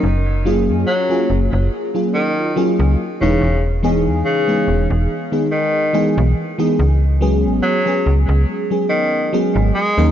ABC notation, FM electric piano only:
X:1
M:4/4
L:1/16
Q:"Swing 16ths" 1/4=71
K:C#mix
V:1 name="FM electric piano"
z2 [F,A,CEG]3 [F,A,CEG]4 [F,A,CEG]3 [F,A,CEG]2 z [=E,G,B,DG] | z2 [=E,G,B,DG]3 [E,G,B,DG]4 [D,G,B,DG]3 [E,G,B,DG]2 z [E,G,B,DG] | z2 [F,G,B,CG]3 [F,G,B,CG]4 [F,G,B,CG]3 [F,G,B,CG]2 z [F,A,CDA] |]